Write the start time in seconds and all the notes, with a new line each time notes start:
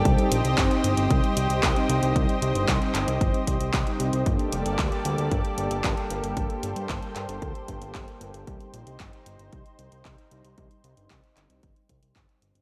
Already playing: G4
0.05 C2 G3 C4 D#4 C5 D#5, kick, closed hi-hat
0.18 closed hi-hat
0.32 A#1, closed hi-hat
0.45 C2, closed hi-hat
0.58 G1, kick, clap, closed hi-hat
0.71 closed hi-hat
0.84 G1, closed hi-hat
0.97 G1, closed hi-hat
1.11 C2, kick, closed hi-hat
1.24 closed hi-hat
1.37 C2, closed hi-hat
1.50 C2, closed hi-hat
1.63 C2, kick, clap, closed hi-hat
1.76 G3 C4 D#4 C5, closed hi-hat
1.89 C2, closed hi-hat
2.03 C2, closed hi-hat
2.16 C2 G3 C4 D#4 C5, kick, closed hi-hat
2.29 closed hi-hat
2.42 C2, closed hi-hat
2.55 G1, closed hi-hat
2.68 C2, kick, clap, closed hi-hat
2.82 closed hi-hat
2.95 G1, clap, closed hi-hat
3.08 C2, closed hi-hat
3.21 G1, kick, closed hi-hat
3.34 closed hi-hat
3.47 C2, kick, closed hi-hat
3.60 C2, closed hi-hat
3.74 C2, kick, clap, closed hi-hat
3.87 G3 C4 D#4 C5, closed hi-hat
4.00 C2, closed hi-hat
4.13 C2, closed hi-hat
4.26 G1 G3 A#3 G4 A4 D5, kick, closed hi-hat
4.39 closed hi-hat
4.53 F1, closed hi-hat
4.66 G1, closed hi-hat
4.79 D2, kick, clap, closed hi-hat
4.92 closed hi-hat
5.05 D2, closed hi-hat
5.18 D2, closed hi-hat
5.31 G1, kick, closed hi-hat
5.45 closed hi-hat
5.58 G1, closed hi-hat
5.71 G1, closed hi-hat
5.84 G1, kick, clap, closed hi-hat
5.97 G3 A#3 D4 A4, closed hi-hat
6.10 G1, closed hi-hat
6.24 G1, closed hi-hat
6.37 G1 G3 A#3 D4 A4 C5, kick, closed hi-hat
6.50 closed hi-hat
6.63 G1, closed hi-hat
6.76 G2, closed hi-hat
6.89 G1, kick, clap, closed hi-hat
7.03 closed hi-hat
7.16 G2, clap, closed hi-hat
7.29 G1, closed hi-hat
7.42 D2, kick, closed hi-hat
7.55 closed hi-hat
7.68 G1, kick, closed hi-hat
7.82 G1, closed hi-hat
7.95 G1, kick, clap, closed hi-hat
8.08 G3 A#3 D4 A4, closed hi-hat
8.21 G1, closed hi-hat
8.34 G1, closed hi-hat
8.47 C2 G3 C4 D#4 C5, kick, closed hi-hat
8.60 closed hi-hat
8.74 A#1, closed hi-hat
8.87 C2, closed hi-hat
9.00 G1, kick, clap, closed hi-hat
9.13 closed hi-hat
9.26 G1, closed hi-hat
9.39 G1, closed hi-hat
9.53 C2, kick, closed hi-hat
9.66 closed hi-hat
9.79 C2, closed hi-hat
9.92 C2, closed hi-hat
10.05 C2, kick, clap, closed hi-hat
10.18 G3 C4 D#4, closed hi-hat
10.31 C2, closed hi-hat
10.45 C2, closed hi-hat
10.58 C2 G3 C4 D#4, kick, closed hi-hat
10.71 closed hi-hat
10.84 C2, closed hi-hat
10.97 G1, closed hi-hat
11.10 C2, kick, clap, closed hi-hat
11.24 closed hi-hat
11.37 G1, clap, closed hi-hat
11.50 C2, closed hi-hat
11.63 G1, kick, closed hi-hat
11.76 closed hi-hat
11.89 C2, kick, closed hi-hat
12.03 C2, closed hi-hat
12.16 G1, kick, clap, closed hi-hat
12.29 G3 C4 D#4, closed hi-hat
12.42 G1, closed hi-hat
12.55 G1, closed hi-hat